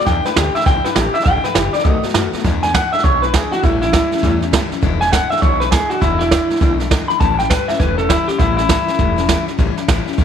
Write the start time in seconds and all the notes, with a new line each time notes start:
0.01 E2, snare
0.06 E2 B2 E3 G#3 D4 E4 G5, kick, snare
0.23 E3 G#3 D4 E4 B4, muted upright bass stroke, snare
0.35 D2 E3 G#3 D4 E4 G4, snare, hi-hat pedal
0.54 E3 G#3 D4 E4 E5, muted upright bass stroke, snare
0.61 snare
0.65 B1 E2 B2 E3 G#3 D4 E4 G5, kick, snare
0.83 E3 G#3 D4 E4 B4, muted upright bass stroke, snare
0.95 A1 E3 G#3 D4 E4 G4, snare, hi-hat pedal
1.13 E3 G#3 D4 E4 E5, muted upright bass stroke, snare
1.20 snare
1.25 G#1 E2 B2 E3 G#3 D4 E4 G5, kick, snare
1.44 E3 G#3 D4 E4 B4, muted upright bass stroke, snare
1.54 F#1 E3 G#3 D4 E4 G4, snare, hi-hat pedal
1.73 E3 G#3 D4 E4 D5, muted upright bass stroke, snare
1.79 snare
1.84 B1 B2 D#3 A3 B3 F#4 D#5, kick, snare
2.02 A3 B3 F#4, muted upright bass stroke, snare
2.09 snare
2.13 F#2 D#3 A3 B3 F#4, snare, hi-hat pedal
2.32 A3 B3 F#4, muted upright bass stroke, snare
2.39 snare
2.44 E2 B2 E3 G#3 D4 E4, kick, snare
2.63 E3 G#3 D4 G#5, snare
2.69 snare
2.73 E3 G#3 D4 E4 F#5, kick, snare, hi-hat pedal
2.92 E3 G#3 D4 E4 E5, muted upright bass stroke, snare
2.99 snare
3.04 B1 E2 B2 E3 G#3 D4 E4 C#5, kick, snare
3.21 E3 G#3 D4 E4 B4, snare
3.33 E3 G#3 D4 E4 G#4, kick, snare, hi-hat pedal
3.52 E3 G#3 D4 E4 F#4, muted upright bass stroke, snare
3.63 A1 A2 E3 G3 C#4 E4, kick, snare
3.81 G3 C#4 E4, snare
3.93 E3 G3 C#4 E4, kick, snare, hi-hat pedal
4.11 G3 C#4 E4, muted upright bass stroke, snare
4.17 snare
4.22 E2 A2 E3 G3 C#4 E4, kick, snare
4.41 G3 C#4 E4, snare
4.51 E3 G3 C#4 E4, kick, snare, hi-hat pedal
4.70 G3 C#4 E4, muted upright bass stroke, snare
4.81 E1 E2 B2 E3 G#3 D4 E4, kick, snare
5.01 E3 G#3 D4 E4 G#5, snare
5.07 snare
5.11 E3 G#3 D4 E4 F#5, kick, snare, hi-hat pedal
5.30 E3 G#3 D4 E4 E5, muted upright bass stroke, snare
5.37 snare
5.42 B1 E2 B2 E3 G#3 D4 E4 C#5, kick, snare
5.60 E3 G#3 D4 E4 B4, snare
5.71 E3 G#3 D4 E4 G#4, kick, snare, hi-hat pedal
5.90 E3 G#3 D4 E4 F#4, muted upright bass stroke, snare
6.00 E1 E2 B2 E3 G#3 D4 E4, kick, snare
6.19 E3 G#3 D4 E4, snare
6.31 E3 G#3 D4 E4, kick, snare, hi-hat pedal
6.50 E3 G#3 D4 E4, muted upright bass stroke, snare
6.56 snare
6.60 B1 E2 B2 E3 G#3 D4 E4, kick, snare
6.78 E3 G#3 D4 E4, snare
6.90 E3 G#3 D4 E4, kick, snare, hi-hat pedal
7.08 E3 G#3 D4 B5, muted upright bass stroke, snare
7.20 A1 A2 E3 G3 C#4 E4 A5, kick, snare
7.39 G3 C#4 E4 G5, snare
7.45 snare
7.50 E3 G3 C#4 E4 B4, kick, snare, hi-hat pedal
7.68 G3 C#4 E4 E5, muted upright bass stroke, snare
7.74 snare
7.79 E1 A2 E3 G3 C#4 E4 B4, kick, snare
7.98 G3 C#4 E4 A4, snare
8.09 E3 G3 C#4 E4, kick, snare, hi-hat pedal
8.28 G3 C#4 E4 G4, muted upright bass stroke, snare
8.39 A1 A2 E3 G3 C#4 E4, kick, snare
8.57 G3 C#4 E4, snare
8.68 E3 G3 C#4 E4, kick, snare, hi-hat pedal
8.87 G3 C#4 E4, muted upright bass stroke, snare
8.94 snare
8.98 E1 A2 E3 G3 C#4 E4, kick, snare
9.16 G3 C#4 E4, snare
9.27 E3 G3 C#4 E4, kick, snare, hi-hat pedal
9.46 G3 C#4 E4, muted upright bass stroke, snare
9.58 A1 A2 E3 G3 C#4 E4, kick, snare
9.76 G3 C#4 E4, muted upright bass stroke, snare
9.88 A1 E3 G3 C#4 E4, kick, snare, hi-hat pedal
10.06 G3 C#4 E4, muted upright bass stroke, snare
10.13 snare
10.18 G1 A2 E3 G3 C#4 E4, kick, snare